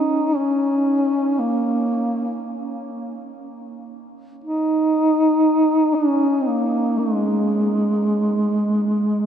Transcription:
0.00 0.38 D#4 medium
0.36 1.41 C#4 medium
1.39 2.42 A#3 medium
4.44 5.96 D#4 medium
5.95 6.42 C#4 medium
6.41 6.49 C4 soft
6.47 7.01 A#3 medium
6.99 9.26 G#3 medium

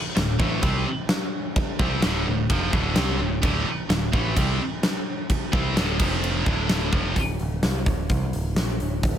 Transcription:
0.16 0.38 D1 medium
0.16 0.35 D2 medium
0.16 0.35 A2 medium
0.16 snare loud
0.16 crash medium
0.40 0.61 A1 loud
0.40 0.62 A2 medium
0.40 0.62 E3 loud
0.40 0.63 A3 loud
0.40 kick loud
0.62 0.84 C2 medium
0.62 0.85 C3 medium
0.62 0.85 G3 loud
0.62 0.86 C4 loud
0.62 kick loud
0.62 crash medium
1.09 snare loud
1.09 crash medium
1.56 kick loud
1.56 crash medium
1.79 2.01 C2 loud
1.79 2.01 C3 medium
1.79 2.02 G3 loud
1.79 2.03 C4 loud
1.79 kick loud
2.02 2.25 D1 loud
2.02 2.25 D2 medium
2.02 2.25 A2 loud
2.02 2.26 D3 loud
2.02 snare loud
2.02 crash medium
2.26 2.48 D1 medium
2.26 2.45 D2 medium
2.26 2.45 A2 medium
2.49 2.71 F1 medium
2.49 2.72 F2 medium
2.49 2.72 C3 loud
2.49 2.73 F3 loud
2.49 kick loud
2.49 crash medium
2.72 2.94 D1 medium
2.72 2.95 D2 medium
2.72 2.95 A2 loud
2.72 2.96 D3 loud
2.72 kick loud
2.95 3.18 C2 loud
2.95 3.18 C3 loud
2.95 3.19 G3 loud
2.95 3.19 C4 loud
2.95 snare loud
2.95 crash medium
3.19 3.41 D1 medium
3.19 3.38 D2 medium
3.19 3.38 A2 medium
3.42 3.64 D1 medium
3.42 3.65 D2 medium
3.42 3.65 A2 loud
3.42 3.66 D3 loud
3.42 kick loud
3.42 crash medium
3.66 muted picked electric bass stroke soft
3.66 muted distorted electric guitar stroke medium
3.90 4.11 D1 medium
3.90 4.08 D2 medium
3.90 4.08 A2 medium
3.90 snare loud
3.90 crash medium
4.13 4.35 A1 loud
4.13 4.35 A2 medium
4.13 4.35 E3 loud
4.13 4.36 A3 loud
4.13 kick loud
4.36 4.58 C2 medium
4.36 4.59 C3 medium
4.36 4.59 G3 loud
4.36 4.59 C4 loud
4.36 kick loud
4.36 crash medium
4.83 snare loud
4.83 crash medium
5.30 kick medium
5.30 crash medium
5.52 5.75 C2 loud
5.52 5.75 C3 medium
5.52 5.75 G3 loud
5.52 5.76 C4 loud
5.52 kick loud
5.76 5.98 D1 loud
5.76 5.98 D2 medium
5.76 5.99 A2 loud
5.76 5.99 D3 loud
5.76 snare loud
5.76 crash medium
5.99 6.43 F1 loud
5.99 6.45 F2 medium
5.99 6.45 C3 medium
5.99 6.45 F3 loud
5.99 kick loud
5.99 crash loud
6.24 crash medium
6.46 6.90 D1 medium
6.46 6.92 D2 medium
6.46 6.92 A2 loud
6.46 6.92 D3 loud
6.46 kick loud
6.69 snare loud
6.69 crash medium
6.92 7.15 F1 loud
6.92 7.15 F2 medium
6.92 7.16 C3 medium
6.92 7.16 F3 medium
6.92 kick loud
7.16 7.38 D1 medium
7.16 kick medium
7.16 open hi-hat medium
7.39 7.62 D1 medium
7.39 open hi-hat soft
7.63 7.85 C2 loud
7.63 snare loud
7.63 open hi-hat medium
7.86 8.08 D1 medium
7.86 kick loud
7.86 open hi-hat soft
8.09 8.32 C2 medium
8.09 kick medium
8.09 open hi-hat medium
8.33 8.55 D1 medium
8.33 open hi-hat medium
8.56 8.78 A#1 medium
8.56 snare loud
8.56 open hi-hat medium
8.80 9.02 D1 medium
8.80 open hi-hat medium
9.03 9.18 D1 medium
9.03 kick loud
9.03 open hi-hat medium

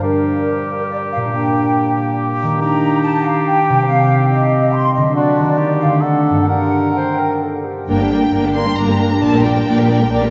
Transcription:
0.00 1.26 G2 soft
0.00 1.19 G3 soft
0.00 1.31 G3 soft
0.00 1.24 D4 soft
0.00 2.57 G4 soft
0.00 1.28 A#4 soft
0.00 0.90 A#4 soft
0.91 0.97 D5 medium
1.12 1.18 F5 medium
1.16 2.53 A#2 soft
1.20 2.46 G3 soft
1.25 2.50 D4 soft
1.29 2.58 A#3 soft
1.29 2.55 A#4 soft
1.33 2.17 G5 medium
2.43 3.81 D#3 soft
2.47 3.73 G3 soft
2.52 3.85 D4 soft
2.56 3.87 A#4 soft
2.56 3.00 A#5 medium
2.60 3.59 D#4 medium
2.60 4.85 G4 medium
3.02 3.24 A5 medium
3.24 3.45 F5 medium
3.46 3.87 G5 medium
3.69 5.08 C3 soft
3.74 5.10 G3 soft
3.79 5.05 C4 soft
3.83 5.57 C5 soft
3.87 5.11 C4 medium
3.87 4.29 F5 medium
4.31 4.72 D#5 medium
4.73 4.94 C6 medium
4.94 5.50 D3 soft
4.94 5.15 D#5 medium
5.02 5.53 F#3 soft
5.06 5.55 C4 soft
5.11 5.57 A4 soft
5.11 5.78 D5 medium
5.15 5.59 D4 medium
5.15 5.59 F#4 soft
5.40 5.95 D#3 soft
5.44 5.97 G3 soft
5.49 5.99 A#3 soft
5.53 6.02 G4 soft
5.58 6.04 D#4 soft
5.58 6.03 G4 soft
5.80 6.02 F5 medium
5.84 6.41 D3 soft
5.88 6.43 A3 soft
5.93 6.38 D4 soft
5.98 6.50 A4 soft
5.98 6.43 D5 soft
6.02 6.50 D4 soft
6.02 6.48 F#5 soft
6.30 7.81 G2 soft
6.35 8.09 A#3 soft
6.39 8.98 D4 soft
6.44 8.31 D5 soft
6.48 6.91 G4 soft
6.48 7.66 A#4 soft
6.48 6.95 F#5 medium
6.96 7.21 C5 medium
6.96 7.43 G5 soft
7.19 7.44 A#4 soft
7.43 7.67 A4 soft
7.65 7.88 G4 soft
7.89 8.28 G1 soft
7.89 9.24 G2 soft
7.89 8.28 G2 soft
7.89 7.99 A#3 soft
7.89 7.98 A#3 soft
7.89 7.99 D4 soft
7.89 7.99 A#4 soft
7.89 8.51 G5 medium
7.99 8.11 G3 soft
7.99 8.10 A#3 soft
7.99 8.11 D4 soft
7.99 8.12 G4 soft
8.10 10.30 A#3 soft
8.10 8.21 A#3 soft
8.10 8.22 A#3 soft
8.10 8.22 D4 soft
8.10 8.22 A#4 soft
8.22 8.33 G3 soft
8.22 8.32 A#3 soft
8.22 8.33 D4 soft
8.22 8.33 G4 soft
8.32 8.72 G1 medium
8.32 8.72 G2 soft
8.32 8.43 A#3 soft
8.32 8.44 A#3 soft
8.32 8.43 D4 soft
8.32 8.44 A#4 soft
8.32 8.75 D5 soft
8.44 8.55 G3 soft
8.44 8.54 A#3 soft
8.44 8.55 D4 soft
8.44 8.56 G4 soft
8.54 8.65 A#3 soft
8.54 8.67 A#3 soft
8.54 8.66 D4 soft
8.54 10.30 A#4 soft
8.54 8.67 A#4 soft
8.54 8.77 C6 medium
8.66 8.77 G3 soft
8.66 8.76 A#3 soft
8.66 8.78 D4 soft
8.66 8.78 G4 soft
8.76 9.17 G1 soft
8.76 9.17 G2 soft
8.76 8.87 A#3 soft
8.76 8.89 A#3 soft
8.76 8.88 D4 soft
8.76 8.89 A#4 soft
8.76 9.66 D5 soft
8.76 9.22 A#5 medium
8.88 9.00 G3 soft
8.88 8.98 A#3 soft
8.88 9.01 D4 soft
8.88 9.01 G4 soft
8.99 9.09 A#3 soft
8.99 9.12 A#3 soft
8.99 9.11 D4 soft
8.99 10.30 D4 soft
8.99 9.12 A#4 soft
9.10 9.22 G3 soft
9.10 9.21 A#3 soft
9.10 9.23 D4 soft
9.10 9.23 G4 soft
9.21 9.62 A#1 soft
9.21 10.30 A#2 soft
9.21 9.62 A#2 medium
9.21 9.32 A#3 soft
9.21 9.33 D4 soft
9.21 9.34 A#4 soft
9.21 9.34 D5 soft
9.21 9.45 A5 medium
9.33 9.45 G3 soft
9.33 9.44 A#3 soft
9.33 9.46 G4 soft
9.33 9.45 A#4 soft
9.44 10.30 G3 soft
9.44 9.55 A#3 soft
9.44 9.56 D4 soft
9.44 9.56 A#4 soft
9.44 9.56 D5 soft
9.44 10.30 G5 medium
9.56 9.67 G3 soft
9.56 9.66 A#3 soft
9.56 9.68 G4 soft
9.56 9.67 A#4 soft
9.66 10.06 A#1 soft
9.66 10.06 A#2 soft
9.66 9.76 A#3 soft
9.66 9.77 D4 soft
9.66 9.78 A#4 soft
9.66 10.10 D5 soft
9.66 9.78 D5 soft
9.77 9.89 G3 soft
9.77 9.88 A#3 soft
9.77 9.89 G4 soft
9.77 9.88 A#4 soft
9.88 9.99 A#3 soft
9.88 10.00 D4 soft
9.88 10.30 G4 soft
9.88 9.99 A#4 soft
9.88 10.00 D5 soft
10.00 10.11 G3 soft
10.00 10.10 A#3 soft
10.00 10.11 G4 soft
10.00 10.11 A#4 soft
10.10 10.30 A#1 medium
10.10 10.30 A#2 medium
10.10 10.22 A#3 soft
10.10 10.22 D4 soft
10.10 10.22 A#4 soft
10.10 10.30 D5 soft
10.10 10.22 D5 soft
10.22 10.30 G3 soft
10.22 10.30 A#3 soft
10.22 10.30 G4 soft
10.22 10.30 A#4 soft

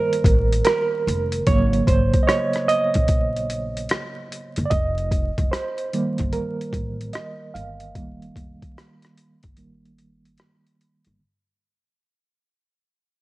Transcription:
0.00 1.43 D#3 medium
0.00 1.43 G3 soft
0.00 1.44 A#3 medium
0.00 0.61 A#4 medium
0.00 1.48 C5 medium
0.00 1.48 D#5 loud
0.13 closed hi-hat soft
0.24 0.60 A1 medium
0.24 kick loud
0.24 closed hi-hat medium
0.53 closed hi-hat soft
0.65 1.42 A#4 medium
0.65 cross-stick loud
0.65 closed hi-hat medium
1.07 1.42 F1 medium
1.07 closed hi-hat medium
1.32 closed hi-hat soft
1.47 1.82 G#1 medium
1.47 2.65 C#3 medium
1.47 2.65 F#3 soft
1.47 2.65 A#3 medium
1.47 1.65 C#5 loud
1.47 kick loud
1.47 closed hi-hat medium
1.73 closed hi-hat soft
1.87 2.10 G#1 medium
1.87 2.24 C5 medium
1.87 kick medium
1.87 closed hi-hat medium
2.14 kick medium
2.14 closed hi-hat soft
2.23 2.28 D#5 medium
2.27 2.65 C#5 medium
2.27 cross-stick loud
2.27 closed hi-hat medium
2.53 cross-stick soft
2.53 closed hi-hat soft
2.68 4.26 D#5 medium
2.68 closed hi-hat medium
2.94 3.86 A#1 medium
2.94 kick medium
2.94 closed hi-hat medium
3.08 kick medium
3.08 closed hi-hat medium
3.36 closed hi-hat soft
3.50 closed hi-hat medium
3.77 closed hi-hat soft
3.89 cross-stick loud
3.89 closed hi-hat medium
4.32 closed hi-hat medium
4.56 4.69 F#1 medium
4.56 closed hi-hat soft
4.65 4.71 D5 medium
4.70 5.29 F1 medium
4.70 5.54 D#5 medium
4.70 kick loud
4.70 closed hi-hat medium
4.98 closed hi-hat soft
5.11 kick medium
5.11 closed hi-hat medium
5.38 5.50 F1 medium
5.38 kick medium
5.38 closed hi-hat soft
5.51 6.35 C5 medium
5.51 cross-stick loud
5.51 closed hi-hat medium
5.78 closed hi-hat soft
5.93 7.94 D#3 medium
5.93 7.94 G3 soft
5.93 7.96 A#3 medium
5.93 closed hi-hat medium
6.18 6.32 G1 medium
6.18 kick medium
6.18 closed hi-hat soft
6.33 7.16 A#4 medium
6.33 closed hi-hat medium
6.61 closed hi-hat soft
6.73 7.08 A1 medium
6.73 kick medium
6.73 closed hi-hat medium
7.01 closed hi-hat soft
7.13 7.32 D#5 medium
7.13 cross-stick loud
7.13 closed hi-hat medium
7.54 7.95 G1 medium
7.54 10.34 F5 medium
7.54 closed hi-hat medium
7.80 closed hi-hat soft
7.95 8.30 F1 medium
7.95 8.54 D#3 soft
7.95 8.54 G3 soft
7.95 8.55 A#3 medium
7.95 kick loud
7.95 closed hi-hat medium
8.22 closed hi-hat soft
8.36 8.59 F1 medium
8.36 kick medium
8.36 closed hi-hat medium
8.62 kick medium
8.62 closed hi-hat soft
8.78 cross-stick loud
8.78 closed hi-hat medium
9.02 cross-stick soft
9.02 closed hi-hat soft
9.18 closed hi-hat medium
9.43 10.35 G1 medium
9.43 kick medium
9.43 closed hi-hat soft
9.57 9.94 D#3 soft
9.57 9.94 G3 soft
9.57 9.94 A#3 soft
9.57 closed hi-hat medium
9.85 closed hi-hat soft
9.98 closed hi-hat medium
10.25 closed hi-hat soft
10.38 cross-stick loud
10.38 closed hi-hat medium
10.67 closed hi-hat soft
10.81 closed hi-hat medium
11.05 11.18 G1 medium
11.05 closed hi-hat soft

